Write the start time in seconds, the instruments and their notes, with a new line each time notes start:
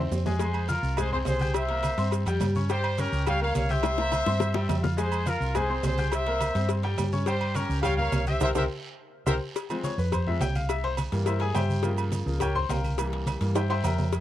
Already playing: grand piano C4 C5, trumpet section C5 E5
0.00 grand piano C6
0.11 fingered electric bass F2, low bongo, low timbale, short guiro, maracas
0.26 grand piano G#3 G#4 G#5, low bongo, low conga, low timbale, short guiro, maracas
0.39 grand piano G#3 G#4 G#5, trumpet section G#4 C5, cowbell, high conga, low agogo, long guiro, maracas
0.54 high conga, low agogo
0.68 grand piano F4 F5 F6, trumpet section F4 A#4, cowbell, high conga, low timbale, short guiro, maracas
0.83 fingered electric bass C2, high conga, short guiro, maracas
0.97 grand piano G#3 G#4 G#5, trumpet section G#4 C5, cowbell, high conga, low conga, low agogo, long guiro, maracas
1.12 grand piano C4 C5 C6, trumpet section G#4 C5, high conga, low conga
1.25 fingered electric bass C2, trumpet section G#4 C5, cowbell, high conga, low timbale, low agogo, short guiro, maracas
1.39 grand piano G4 G5 G6, high conga, low agogo, short guiro, maracas
1.54 trumpet section C5 E5, cowbell, low agogo, long guiro, maracas
1.69 grand piano A#3 A#4 A#5, cowbell, high conga
1.83 cowbell, high conga, low timbale, low agogo, short guiro, maracas
1.98 fingered electric bass G2, grand piano C4 C5 C6, cowbell, high conga, short guiro, maracas
2.11 cowbell, high conga, low agogo, maracas
2.26 fingered electric bass F2, grand piano G3 G4 G5, cowbell, high conga, low agogo, maracas
2.40 fingered electric bass G2, cowbell, high conga, low timbale, low agogo, short guiro, maracas
2.55 grand piano C#4 C#5 C#6, high conga, short guiro, maracas
2.69 grand piano G3 G4 G5, trumpet section G4 C5, cowbell, low agogo, long guiro, maracas
2.84 high conga, low agogo
2.98 grand piano C#4 C#5 C#6, trumpet section G4 A#4, cowbell, high conga, low timbale, short guiro, maracas
3.12 fingered electric bass C#2, short guiro, maracas
3.26 grand piano G3 G4 G5, trumpet section C#5 F5, cowbell, high conga, low conga, low agogo, maracas
3.41 grand piano A#3 A#4 A#5, trumpet section C#5 F5, high conga
3.55 fingered electric bass C2, trumpet section C#5 F5, cowbell, high conga, low timbale, low agogo, short guiro, maracas
3.69 grand piano G4 G5 G6, trumpet section C5 E5, high conga, low agogo, short guiro, maracas
3.83 cowbell, high bongo, high conga, low agogo, long guiro, maracas
3.98 grand piano A#3 A#4 A#5, cowbell, high bongo, high conga
4.12 cowbell, high bongo, high conga, low timbale, low agogo, short guiro, maracas
4.26 fingered electric bass G2, grand piano C4 C5 C6, cowbell, high bongo, short guiro, maracas
4.40 cowbell, low bongo, high conga, low agogo, long guiro, maracas
4.54 grand piano G3 G4 G5, cowbell, low bongo, high conga, low agogo
4.69 fingered electric bass F2, cowbell, low bongo, high conga, low timbale, low agogo, short guiro, maracas
4.83 grand piano F4 F5 F6, low bongo, high conga, short guiro, maracas
4.97 grand piano G#3 G#4 G#5, trumpet section G#4 C5, cowbell, low agogo, maracas
5.12 high conga, low agogo, maracas
5.26 grand piano F4 F5 F6, trumpet section F4 A#4, cowbell, high conga, low timbale, short guiro, maracas
5.40 fingered electric bass C2, high conga, short guiro, maracas
5.55 grand piano G#3 G#4 G#5, trumpet section G#4 C5, cowbell, high conga, low conga, low agogo, long guiro, maracas
5.69 grand piano C4 C5 C6, high conga
5.83 fingered electric bass C2, trumpet section G#4 C5, cowbell, high conga, low timbale, low agogo, short guiro, maracas
5.98 grand piano G4 G5 G6, high conga, low agogo, short guiro, maracas
6.12 trumpet section C5 E5, cowbell, low agogo, long guiro, maracas
6.26 grand piano A#3 A#4 A#5, cowbell, high conga
6.41 cowbell, high conga, low timbale, low agogo, short guiro, maracas
6.55 fingered electric bass G2, grand piano C4 C5 C6, cowbell, high conga, short guiro, maracas
6.69 cowbell, high conga, low agogo, long guiro, maracas
6.83 grand piano G3 G4 G5, cowbell, high conga, low agogo
6.98 fingered electric bass G2, cowbell, high conga, low timbale, low agogo, short guiro, maracas
7.12 grand piano C#4 C#5 C#6, high conga, short guiro, maracas
7.26 grand piano G3 G4 G5, trumpet section G4 C5, cowbell, low agogo, long guiro, maracas
7.41 high conga, low agogo
7.55 grand piano C#4 C#5 C#6, trumpet section G4 A#4, cowbell, high conga, low timbale, short guiro, maracas
7.69 fingered electric bass C#2, short guiro, maracas
7.82 grand piano G3 G4 G5, trumpet section C#5 F5, cowbell, high conga, low conga, low agogo, long guiro, maracas
7.97 grand piano A#3 A#4 A#5, trumpet section C#5 F5, high conga, low conga
8.12 fingered electric bass C2, cowbell, high conga, low timbale, low agogo, short guiro, maracas
8.26 grand piano G4 G5 G6, trumpet section C5 E5, high conga, low agogo, short guiro, maracas
8.41 fingered electric bass C2, grand piano G4 A#4 C5, trumpet section A#4 C5 E5, cowbell, high conga, high timbale, long guiro, maracas
8.55 fingered electric bass C2, grand piano G4 A#4 C5, trumpet section A#4 C5 E5, cowbell, high conga, high timbale, long guiro, maracas
9.26 fingered electric bass C2, grand piano G4 A#4 C5, trumpet section A#4 C5 E5, cowbell, high conga, high timbale, long guiro, maracas
9.55 cowbell, high conga, low agogo, long guiro, maracas
9.70 grand piano F3 G#3 C4, high conga, low agogo, maracas
9.84 grand piano C#5, cowbell, high conga, low timbale, short guiro, maracas
9.98 fingered electric bass F2, grand piano B4, high conga, short guiro, maracas
10.12 grand piano C5, cowbell, high conga, low conga, low agogo, long guiro, maracas
10.27 grand piano F3 G#3 C4 E5, high conga, low conga
10.40 fingered electric bass C2, grand piano G5, cowbell, high conga, low timbale, low agogo, short guiro, maracas
10.55 grand piano F5, high conga, low agogo, short guiro, maracas
10.69 grand piano E5, cowbell, low agogo, long guiro, maracas
10.84 grand piano C5, cowbell, high conga
10.97 cowbell, high conga, low timbale, low agogo, short guiro, maracas
11.12 fingered electric bass G2, grand piano E3 G3 A#3, cowbell, short guiro, maracas
11.26 grand piano E4 A#4 C5 E5, cowbell, high conga, low agogo, long guiro, maracas
11.40 grand piano G#4 G#5, cowbell, high conga, low agogo
11.55 fingered electric bass G2, grand piano G4 C5 E5 G5, cowbell, high conga, low timbale, low agogo, short guiro, maracas
11.69 high conga, short guiro, maracas
11.83 grand piano C#3 F3 A#3, cowbell, high conga, low agogo, long guiro, maracas
11.98 low agogo, maracas
12.12 cowbell, high conga, low timbale, short guiro, maracas
12.26 fingered electric bass C#2, grand piano C#3 F3 A#3, short guiro, maracas
12.40 grand piano G4 A#4 C#5 G5, cowbell, high conga, low conga, low agogo, maracas
12.55 grand piano C5 C6, high conga, low conga
12.69 fingered electric bass C2, grand piano A#4 F5 G5 A#5, cowbell, high conga, low timbale, low agogo, short guiro, maracas
12.84 high conga, low agogo, short guiro, maracas
12.98 grand piano E3 G3 A#3, cowbell, high conga, low agogo, long guiro, maracas
13.12 cowbell, high conga
13.26 cowbell, high conga, low timbale, low agogo, short guiro, maracas
13.41 fingered electric bass G2, grand piano E3 G3 A#3, cowbell, short guiro, maracas
13.55 grand piano G4 C5 E5 G5, cowbell, high conga, high timbale, low agogo, long guiro, maracas
13.70 grand piano C5 E5 G5 C6, cowbell, high conga, high timbale, low agogo
13.84 fingered electric bass F2, grand piano A#4 E5 G5 A#5, cowbell, high conga, low timbale, low agogo, short guiro, maracas
13.98 high conga, low timbale, short guiro, maracas
14.13 cowbell, high conga, low agogo, long guiro, maracas